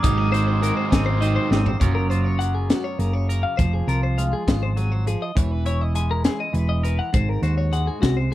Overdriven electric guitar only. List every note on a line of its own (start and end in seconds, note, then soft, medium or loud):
0.03 0.33 D#3 medium
0.03 0.33 F#3 medium
0.03 0.32 C4 medium
0.03 0.32 D#4 loud
0.33 0.61 D#3 medium
0.33 0.61 F#3 medium
0.33 0.62 C4 medium
0.33 0.62 D#4 medium
0.62 0.91 D#3 medium
0.62 0.91 F#3 medium
0.62 0.91 C4 medium
0.62 0.90 D#4 medium
0.91 1.19 D#3 medium
0.91 1.20 F#3 medium
0.91 1.20 C4 medium
0.91 1.21 D#4 loud
1.21 1.60 D#3 medium
1.21 1.60 F#3 medium
1.21 1.60 C4 medium
1.21 1.60 D#4 medium